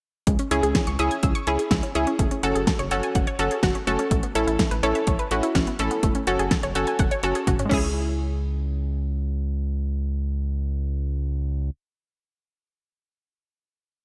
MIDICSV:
0, 0, Header, 1, 5, 480
1, 0, Start_track
1, 0, Key_signature, 4, "minor"
1, 0, Tempo, 480000
1, 272, Time_signature, 4, 2, 24, 8
1, 14042, End_track
2, 0, Start_track
2, 0, Title_t, "Synth arpeggio sound"
2, 0, Program_c, 0, 84
2, 272, Note_on_c, 0, 56, 87
2, 344, Note_off_c, 0, 56, 0
2, 393, Note_on_c, 0, 61, 76
2, 465, Note_off_c, 0, 61, 0
2, 512, Note_on_c, 0, 64, 74
2, 584, Note_off_c, 0, 64, 0
2, 631, Note_on_c, 0, 68, 88
2, 704, Note_off_c, 0, 68, 0
2, 752, Note_on_c, 0, 80, 79
2, 824, Note_off_c, 0, 80, 0
2, 872, Note_on_c, 0, 85, 85
2, 944, Note_off_c, 0, 85, 0
2, 990, Note_on_c, 0, 88, 101
2, 1063, Note_off_c, 0, 88, 0
2, 1110, Note_on_c, 0, 92, 91
2, 1183, Note_off_c, 0, 92, 0
2, 1230, Note_on_c, 0, 88, 84
2, 1303, Note_off_c, 0, 88, 0
2, 1350, Note_on_c, 0, 85, 98
2, 1423, Note_off_c, 0, 85, 0
2, 1470, Note_on_c, 0, 80, 77
2, 1543, Note_off_c, 0, 80, 0
2, 1590, Note_on_c, 0, 68, 76
2, 1663, Note_off_c, 0, 68, 0
2, 1710, Note_on_c, 0, 64, 87
2, 1783, Note_off_c, 0, 64, 0
2, 1831, Note_on_c, 0, 61, 71
2, 1904, Note_off_c, 0, 61, 0
2, 1952, Note_on_c, 0, 56, 71
2, 2025, Note_off_c, 0, 56, 0
2, 2072, Note_on_c, 0, 61, 88
2, 2144, Note_off_c, 0, 61, 0
2, 2192, Note_on_c, 0, 57, 85
2, 2264, Note_off_c, 0, 57, 0
2, 2313, Note_on_c, 0, 61, 77
2, 2385, Note_off_c, 0, 61, 0
2, 2432, Note_on_c, 0, 66, 79
2, 2504, Note_off_c, 0, 66, 0
2, 2553, Note_on_c, 0, 68, 89
2, 2625, Note_off_c, 0, 68, 0
2, 2671, Note_on_c, 0, 69, 82
2, 2744, Note_off_c, 0, 69, 0
2, 2791, Note_on_c, 0, 73, 83
2, 2864, Note_off_c, 0, 73, 0
2, 2913, Note_on_c, 0, 78, 105
2, 2985, Note_off_c, 0, 78, 0
2, 3033, Note_on_c, 0, 80, 91
2, 3105, Note_off_c, 0, 80, 0
2, 3154, Note_on_c, 0, 78, 86
2, 3225, Note_off_c, 0, 78, 0
2, 3272, Note_on_c, 0, 73, 99
2, 3345, Note_off_c, 0, 73, 0
2, 3392, Note_on_c, 0, 69, 83
2, 3464, Note_off_c, 0, 69, 0
2, 3513, Note_on_c, 0, 68, 80
2, 3585, Note_off_c, 0, 68, 0
2, 3632, Note_on_c, 0, 66, 92
2, 3704, Note_off_c, 0, 66, 0
2, 3752, Note_on_c, 0, 61, 71
2, 3824, Note_off_c, 0, 61, 0
2, 3871, Note_on_c, 0, 57, 69
2, 3944, Note_off_c, 0, 57, 0
2, 3991, Note_on_c, 0, 61, 93
2, 4064, Note_off_c, 0, 61, 0
2, 4114, Note_on_c, 0, 57, 85
2, 4185, Note_off_c, 0, 57, 0
2, 4232, Note_on_c, 0, 59, 76
2, 4304, Note_off_c, 0, 59, 0
2, 4351, Note_on_c, 0, 61, 75
2, 4424, Note_off_c, 0, 61, 0
2, 4473, Note_on_c, 0, 64, 89
2, 4545, Note_off_c, 0, 64, 0
2, 4591, Note_on_c, 0, 69, 79
2, 4664, Note_off_c, 0, 69, 0
2, 4711, Note_on_c, 0, 71, 87
2, 4784, Note_off_c, 0, 71, 0
2, 4831, Note_on_c, 0, 73, 104
2, 4904, Note_off_c, 0, 73, 0
2, 4952, Note_on_c, 0, 76, 90
2, 5025, Note_off_c, 0, 76, 0
2, 5072, Note_on_c, 0, 73, 86
2, 5144, Note_off_c, 0, 73, 0
2, 5192, Note_on_c, 0, 71, 100
2, 5264, Note_off_c, 0, 71, 0
2, 5312, Note_on_c, 0, 69, 79
2, 5384, Note_off_c, 0, 69, 0
2, 5431, Note_on_c, 0, 64, 79
2, 5504, Note_off_c, 0, 64, 0
2, 5552, Note_on_c, 0, 61, 94
2, 5624, Note_off_c, 0, 61, 0
2, 5674, Note_on_c, 0, 59, 73
2, 5746, Note_off_c, 0, 59, 0
2, 5792, Note_on_c, 0, 57, 72
2, 5864, Note_off_c, 0, 57, 0
2, 5911, Note_on_c, 0, 59, 90
2, 5984, Note_off_c, 0, 59, 0
2, 6033, Note_on_c, 0, 57, 86
2, 6105, Note_off_c, 0, 57, 0
2, 6152, Note_on_c, 0, 61, 77
2, 6225, Note_off_c, 0, 61, 0
2, 6274, Note_on_c, 0, 66, 76
2, 6346, Note_off_c, 0, 66, 0
2, 6393, Note_on_c, 0, 68, 90
2, 6465, Note_off_c, 0, 68, 0
2, 6515, Note_on_c, 0, 69, 82
2, 6586, Note_off_c, 0, 69, 0
2, 6634, Note_on_c, 0, 73, 83
2, 6706, Note_off_c, 0, 73, 0
2, 6752, Note_on_c, 0, 78, 102
2, 6825, Note_off_c, 0, 78, 0
2, 6874, Note_on_c, 0, 80, 90
2, 6946, Note_off_c, 0, 80, 0
2, 6995, Note_on_c, 0, 78, 88
2, 7066, Note_off_c, 0, 78, 0
2, 7114, Note_on_c, 0, 73, 102
2, 7186, Note_off_c, 0, 73, 0
2, 7235, Note_on_c, 0, 69, 82
2, 7306, Note_off_c, 0, 69, 0
2, 7354, Note_on_c, 0, 68, 78
2, 7426, Note_off_c, 0, 68, 0
2, 7476, Note_on_c, 0, 66, 89
2, 7547, Note_off_c, 0, 66, 0
2, 7595, Note_on_c, 0, 61, 73
2, 7654, Note_on_c, 0, 56, 84
2, 7666, Note_off_c, 0, 61, 0
2, 7694, Note_on_c, 0, 61, 77
2, 7734, Note_on_c, 0, 64, 74
2, 7774, Note_on_c, 0, 68, 90
2, 11642, Note_off_c, 0, 56, 0
2, 11683, Note_off_c, 0, 61, 0
2, 11722, Note_off_c, 0, 64, 0
2, 11762, Note_off_c, 0, 68, 0
2, 14042, End_track
3, 0, Start_track
3, 0, Title_t, "Synth pluck"
3, 0, Program_c, 1, 84
3, 512, Note_on_c, 1, 61, 84
3, 512, Note_on_c, 1, 64, 76
3, 512, Note_on_c, 1, 68, 94
3, 668, Note_off_c, 1, 61, 0
3, 668, Note_off_c, 1, 64, 0
3, 668, Note_off_c, 1, 68, 0
3, 993, Note_on_c, 1, 61, 86
3, 993, Note_on_c, 1, 64, 76
3, 993, Note_on_c, 1, 68, 94
3, 1148, Note_off_c, 1, 61, 0
3, 1148, Note_off_c, 1, 68, 0
3, 1149, Note_off_c, 1, 64, 0
3, 1474, Note_on_c, 1, 64, 76
3, 1475, Note_on_c, 1, 68, 93
3, 1476, Note_on_c, 1, 61, 82
3, 1629, Note_off_c, 1, 64, 0
3, 1630, Note_off_c, 1, 61, 0
3, 1630, Note_off_c, 1, 68, 0
3, 1953, Note_on_c, 1, 64, 77
3, 1953, Note_on_c, 1, 68, 94
3, 1954, Note_on_c, 1, 61, 85
3, 2109, Note_off_c, 1, 61, 0
3, 2109, Note_off_c, 1, 64, 0
3, 2109, Note_off_c, 1, 68, 0
3, 2434, Note_on_c, 1, 66, 75
3, 2434, Note_on_c, 1, 69, 96
3, 2435, Note_on_c, 1, 61, 87
3, 2589, Note_off_c, 1, 66, 0
3, 2589, Note_off_c, 1, 69, 0
3, 2590, Note_off_c, 1, 61, 0
3, 2914, Note_on_c, 1, 61, 87
3, 2914, Note_on_c, 1, 66, 78
3, 2915, Note_on_c, 1, 69, 89
3, 3069, Note_off_c, 1, 61, 0
3, 3069, Note_off_c, 1, 66, 0
3, 3070, Note_off_c, 1, 69, 0
3, 3393, Note_on_c, 1, 61, 84
3, 3393, Note_on_c, 1, 66, 77
3, 3394, Note_on_c, 1, 69, 94
3, 3549, Note_off_c, 1, 61, 0
3, 3549, Note_off_c, 1, 66, 0
3, 3549, Note_off_c, 1, 69, 0
3, 3872, Note_on_c, 1, 66, 81
3, 3873, Note_on_c, 1, 61, 88
3, 3873, Note_on_c, 1, 69, 95
3, 4028, Note_off_c, 1, 61, 0
3, 4028, Note_off_c, 1, 66, 0
3, 4029, Note_off_c, 1, 69, 0
3, 4354, Note_on_c, 1, 69, 98
3, 4355, Note_on_c, 1, 61, 86
3, 4355, Note_on_c, 1, 64, 79
3, 4509, Note_off_c, 1, 69, 0
3, 4510, Note_off_c, 1, 61, 0
3, 4510, Note_off_c, 1, 64, 0
3, 4833, Note_on_c, 1, 61, 84
3, 4833, Note_on_c, 1, 64, 78
3, 4834, Note_on_c, 1, 69, 96
3, 4989, Note_off_c, 1, 61, 0
3, 4989, Note_off_c, 1, 64, 0
3, 4989, Note_off_c, 1, 69, 0
3, 5314, Note_on_c, 1, 66, 93
3, 5315, Note_on_c, 1, 64, 78
3, 5316, Note_on_c, 1, 61, 83
3, 5469, Note_off_c, 1, 66, 0
3, 5470, Note_off_c, 1, 61, 0
3, 5470, Note_off_c, 1, 64, 0
3, 5795, Note_on_c, 1, 61, 83
3, 5795, Note_on_c, 1, 64, 81
3, 5795, Note_on_c, 1, 69, 92
3, 5950, Note_off_c, 1, 61, 0
3, 5950, Note_off_c, 1, 64, 0
3, 5950, Note_off_c, 1, 69, 0
3, 6273, Note_on_c, 1, 66, 78
3, 6274, Note_on_c, 1, 61, 84
3, 6274, Note_on_c, 1, 69, 96
3, 6429, Note_off_c, 1, 61, 0
3, 6429, Note_off_c, 1, 66, 0
3, 6429, Note_off_c, 1, 69, 0
3, 6756, Note_on_c, 1, 61, 84
3, 6756, Note_on_c, 1, 66, 78
3, 6756, Note_on_c, 1, 69, 92
3, 6910, Note_off_c, 1, 61, 0
3, 6910, Note_off_c, 1, 66, 0
3, 6910, Note_off_c, 1, 69, 0
3, 7235, Note_on_c, 1, 61, 81
3, 7235, Note_on_c, 1, 66, 78
3, 7235, Note_on_c, 1, 69, 93
3, 7390, Note_off_c, 1, 61, 0
3, 7390, Note_off_c, 1, 66, 0
3, 7390, Note_off_c, 1, 69, 0
3, 7695, Note_on_c, 1, 61, 85
3, 7716, Note_on_c, 1, 64, 75
3, 7735, Note_on_c, 1, 68, 91
3, 11683, Note_off_c, 1, 61, 0
3, 11704, Note_off_c, 1, 64, 0
3, 11723, Note_off_c, 1, 68, 0
3, 14042, End_track
4, 0, Start_track
4, 0, Title_t, "Analog synth bass"
4, 0, Program_c, 2, 38
4, 271, Note_on_c, 2, 37, 101
4, 375, Note_off_c, 2, 37, 0
4, 512, Note_on_c, 2, 37, 85
4, 616, Note_off_c, 2, 37, 0
4, 631, Note_on_c, 2, 37, 96
4, 735, Note_off_c, 2, 37, 0
4, 872, Note_on_c, 2, 37, 94
4, 976, Note_off_c, 2, 37, 0
4, 993, Note_on_c, 2, 37, 99
4, 1096, Note_off_c, 2, 37, 0
4, 1233, Note_on_c, 2, 37, 102
4, 1337, Note_off_c, 2, 37, 0
4, 1473, Note_on_c, 2, 37, 97
4, 1576, Note_off_c, 2, 37, 0
4, 1711, Note_on_c, 2, 37, 95
4, 1815, Note_off_c, 2, 37, 0
4, 1954, Note_on_c, 2, 37, 91
4, 2057, Note_off_c, 2, 37, 0
4, 2192, Note_on_c, 2, 30, 102
4, 2296, Note_off_c, 2, 30, 0
4, 2433, Note_on_c, 2, 30, 96
4, 2536, Note_off_c, 2, 30, 0
4, 2553, Note_on_c, 2, 30, 90
4, 2656, Note_off_c, 2, 30, 0
4, 2791, Note_on_c, 2, 30, 88
4, 2896, Note_off_c, 2, 30, 0
4, 2912, Note_on_c, 2, 30, 99
4, 3016, Note_off_c, 2, 30, 0
4, 3153, Note_on_c, 2, 30, 107
4, 3257, Note_off_c, 2, 30, 0
4, 3390, Note_on_c, 2, 30, 96
4, 3495, Note_off_c, 2, 30, 0
4, 3631, Note_on_c, 2, 30, 103
4, 3735, Note_off_c, 2, 30, 0
4, 3871, Note_on_c, 2, 30, 87
4, 3975, Note_off_c, 2, 30, 0
4, 4110, Note_on_c, 2, 33, 106
4, 4215, Note_off_c, 2, 33, 0
4, 4353, Note_on_c, 2, 33, 94
4, 4456, Note_off_c, 2, 33, 0
4, 4473, Note_on_c, 2, 33, 91
4, 4576, Note_off_c, 2, 33, 0
4, 4712, Note_on_c, 2, 33, 91
4, 4816, Note_off_c, 2, 33, 0
4, 4831, Note_on_c, 2, 33, 108
4, 4935, Note_off_c, 2, 33, 0
4, 5074, Note_on_c, 2, 33, 102
4, 5177, Note_off_c, 2, 33, 0
4, 5311, Note_on_c, 2, 33, 102
4, 5415, Note_off_c, 2, 33, 0
4, 5552, Note_on_c, 2, 33, 101
4, 5656, Note_off_c, 2, 33, 0
4, 5792, Note_on_c, 2, 33, 99
4, 5896, Note_off_c, 2, 33, 0
4, 6031, Note_on_c, 2, 30, 104
4, 6135, Note_off_c, 2, 30, 0
4, 6272, Note_on_c, 2, 30, 98
4, 6376, Note_off_c, 2, 30, 0
4, 6393, Note_on_c, 2, 30, 93
4, 6496, Note_off_c, 2, 30, 0
4, 6634, Note_on_c, 2, 30, 90
4, 6737, Note_off_c, 2, 30, 0
4, 6753, Note_on_c, 2, 30, 93
4, 6856, Note_off_c, 2, 30, 0
4, 6994, Note_on_c, 2, 30, 105
4, 7097, Note_off_c, 2, 30, 0
4, 7233, Note_on_c, 2, 30, 100
4, 7336, Note_off_c, 2, 30, 0
4, 7472, Note_on_c, 2, 30, 109
4, 7576, Note_off_c, 2, 30, 0
4, 7712, Note_on_c, 2, 37, 93
4, 11700, Note_off_c, 2, 37, 0
4, 14042, End_track
5, 0, Start_track
5, 0, Title_t, "Drums"
5, 270, Note_on_c, 9, 42, 73
5, 271, Note_on_c, 9, 36, 107
5, 370, Note_off_c, 9, 42, 0
5, 371, Note_off_c, 9, 36, 0
5, 389, Note_on_c, 9, 42, 49
5, 489, Note_off_c, 9, 42, 0
5, 511, Note_on_c, 9, 42, 80
5, 611, Note_off_c, 9, 42, 0
5, 633, Note_on_c, 9, 42, 55
5, 733, Note_off_c, 9, 42, 0
5, 748, Note_on_c, 9, 42, 63
5, 749, Note_on_c, 9, 38, 103
5, 750, Note_on_c, 9, 36, 104
5, 848, Note_off_c, 9, 42, 0
5, 849, Note_off_c, 9, 38, 0
5, 850, Note_off_c, 9, 36, 0
5, 870, Note_on_c, 9, 42, 48
5, 970, Note_off_c, 9, 42, 0
5, 990, Note_on_c, 9, 42, 69
5, 1090, Note_off_c, 9, 42, 0
5, 1110, Note_on_c, 9, 42, 45
5, 1210, Note_off_c, 9, 42, 0
5, 1228, Note_on_c, 9, 42, 68
5, 1233, Note_on_c, 9, 36, 112
5, 1328, Note_off_c, 9, 42, 0
5, 1333, Note_off_c, 9, 36, 0
5, 1351, Note_on_c, 9, 42, 42
5, 1451, Note_off_c, 9, 42, 0
5, 1470, Note_on_c, 9, 42, 72
5, 1570, Note_off_c, 9, 42, 0
5, 1591, Note_on_c, 9, 42, 55
5, 1691, Note_off_c, 9, 42, 0
5, 1708, Note_on_c, 9, 38, 108
5, 1710, Note_on_c, 9, 42, 68
5, 1711, Note_on_c, 9, 36, 100
5, 1808, Note_off_c, 9, 38, 0
5, 1810, Note_off_c, 9, 42, 0
5, 1811, Note_off_c, 9, 36, 0
5, 1830, Note_on_c, 9, 42, 45
5, 1930, Note_off_c, 9, 42, 0
5, 1951, Note_on_c, 9, 42, 70
5, 2051, Note_off_c, 9, 42, 0
5, 2069, Note_on_c, 9, 42, 53
5, 2169, Note_off_c, 9, 42, 0
5, 2192, Note_on_c, 9, 36, 107
5, 2192, Note_on_c, 9, 42, 70
5, 2292, Note_off_c, 9, 36, 0
5, 2292, Note_off_c, 9, 42, 0
5, 2312, Note_on_c, 9, 42, 49
5, 2412, Note_off_c, 9, 42, 0
5, 2432, Note_on_c, 9, 42, 79
5, 2532, Note_off_c, 9, 42, 0
5, 2556, Note_on_c, 9, 42, 54
5, 2656, Note_off_c, 9, 42, 0
5, 2671, Note_on_c, 9, 36, 102
5, 2671, Note_on_c, 9, 42, 62
5, 2672, Note_on_c, 9, 38, 101
5, 2771, Note_off_c, 9, 36, 0
5, 2771, Note_off_c, 9, 42, 0
5, 2772, Note_off_c, 9, 38, 0
5, 2792, Note_on_c, 9, 42, 52
5, 2892, Note_off_c, 9, 42, 0
5, 2910, Note_on_c, 9, 42, 71
5, 3010, Note_off_c, 9, 42, 0
5, 3031, Note_on_c, 9, 42, 43
5, 3131, Note_off_c, 9, 42, 0
5, 3151, Note_on_c, 9, 42, 70
5, 3154, Note_on_c, 9, 36, 114
5, 3251, Note_off_c, 9, 42, 0
5, 3254, Note_off_c, 9, 36, 0
5, 3271, Note_on_c, 9, 42, 42
5, 3371, Note_off_c, 9, 42, 0
5, 3390, Note_on_c, 9, 42, 70
5, 3490, Note_off_c, 9, 42, 0
5, 3509, Note_on_c, 9, 42, 53
5, 3609, Note_off_c, 9, 42, 0
5, 3628, Note_on_c, 9, 38, 106
5, 3631, Note_on_c, 9, 36, 100
5, 3631, Note_on_c, 9, 42, 70
5, 3728, Note_off_c, 9, 38, 0
5, 3731, Note_off_c, 9, 36, 0
5, 3731, Note_off_c, 9, 42, 0
5, 3750, Note_on_c, 9, 42, 45
5, 3850, Note_off_c, 9, 42, 0
5, 3873, Note_on_c, 9, 42, 72
5, 3973, Note_off_c, 9, 42, 0
5, 3989, Note_on_c, 9, 42, 53
5, 4089, Note_off_c, 9, 42, 0
5, 4110, Note_on_c, 9, 42, 72
5, 4111, Note_on_c, 9, 36, 107
5, 4210, Note_off_c, 9, 42, 0
5, 4211, Note_off_c, 9, 36, 0
5, 4231, Note_on_c, 9, 42, 50
5, 4331, Note_off_c, 9, 42, 0
5, 4353, Note_on_c, 9, 42, 78
5, 4453, Note_off_c, 9, 42, 0
5, 4476, Note_on_c, 9, 42, 55
5, 4576, Note_off_c, 9, 42, 0
5, 4591, Note_on_c, 9, 36, 104
5, 4592, Note_on_c, 9, 42, 64
5, 4593, Note_on_c, 9, 38, 104
5, 4691, Note_off_c, 9, 36, 0
5, 4692, Note_off_c, 9, 42, 0
5, 4693, Note_off_c, 9, 38, 0
5, 4713, Note_on_c, 9, 42, 51
5, 4813, Note_off_c, 9, 42, 0
5, 4833, Note_on_c, 9, 42, 74
5, 4933, Note_off_c, 9, 42, 0
5, 4951, Note_on_c, 9, 42, 45
5, 5051, Note_off_c, 9, 42, 0
5, 5069, Note_on_c, 9, 42, 67
5, 5074, Note_on_c, 9, 36, 117
5, 5169, Note_off_c, 9, 42, 0
5, 5174, Note_off_c, 9, 36, 0
5, 5191, Note_on_c, 9, 42, 42
5, 5291, Note_off_c, 9, 42, 0
5, 5309, Note_on_c, 9, 42, 70
5, 5409, Note_off_c, 9, 42, 0
5, 5431, Note_on_c, 9, 42, 55
5, 5531, Note_off_c, 9, 42, 0
5, 5550, Note_on_c, 9, 38, 112
5, 5552, Note_on_c, 9, 36, 104
5, 5552, Note_on_c, 9, 42, 69
5, 5650, Note_off_c, 9, 38, 0
5, 5652, Note_off_c, 9, 36, 0
5, 5652, Note_off_c, 9, 42, 0
5, 5671, Note_on_c, 9, 42, 44
5, 5771, Note_off_c, 9, 42, 0
5, 5791, Note_on_c, 9, 42, 69
5, 5891, Note_off_c, 9, 42, 0
5, 5909, Note_on_c, 9, 42, 51
5, 6009, Note_off_c, 9, 42, 0
5, 6030, Note_on_c, 9, 42, 74
5, 6031, Note_on_c, 9, 36, 108
5, 6130, Note_off_c, 9, 42, 0
5, 6131, Note_off_c, 9, 36, 0
5, 6149, Note_on_c, 9, 42, 49
5, 6249, Note_off_c, 9, 42, 0
5, 6270, Note_on_c, 9, 42, 77
5, 6370, Note_off_c, 9, 42, 0
5, 6394, Note_on_c, 9, 42, 54
5, 6494, Note_off_c, 9, 42, 0
5, 6510, Note_on_c, 9, 42, 62
5, 6511, Note_on_c, 9, 36, 104
5, 6511, Note_on_c, 9, 38, 104
5, 6610, Note_off_c, 9, 42, 0
5, 6611, Note_off_c, 9, 36, 0
5, 6611, Note_off_c, 9, 38, 0
5, 6632, Note_on_c, 9, 42, 52
5, 6732, Note_off_c, 9, 42, 0
5, 6752, Note_on_c, 9, 42, 71
5, 6852, Note_off_c, 9, 42, 0
5, 6870, Note_on_c, 9, 42, 45
5, 6970, Note_off_c, 9, 42, 0
5, 6989, Note_on_c, 9, 42, 72
5, 6994, Note_on_c, 9, 36, 120
5, 7089, Note_off_c, 9, 42, 0
5, 7094, Note_off_c, 9, 36, 0
5, 7112, Note_on_c, 9, 42, 43
5, 7212, Note_off_c, 9, 42, 0
5, 7230, Note_on_c, 9, 42, 68
5, 7330, Note_off_c, 9, 42, 0
5, 7352, Note_on_c, 9, 42, 53
5, 7452, Note_off_c, 9, 42, 0
5, 7471, Note_on_c, 9, 48, 54
5, 7472, Note_on_c, 9, 36, 101
5, 7472, Note_on_c, 9, 42, 70
5, 7571, Note_off_c, 9, 48, 0
5, 7572, Note_off_c, 9, 36, 0
5, 7572, Note_off_c, 9, 42, 0
5, 7592, Note_on_c, 9, 42, 46
5, 7593, Note_on_c, 9, 47, 58
5, 7692, Note_off_c, 9, 42, 0
5, 7693, Note_off_c, 9, 47, 0
5, 7711, Note_on_c, 9, 49, 83
5, 7712, Note_on_c, 9, 36, 99
5, 7811, Note_off_c, 9, 49, 0
5, 7812, Note_off_c, 9, 36, 0
5, 14042, End_track
0, 0, End_of_file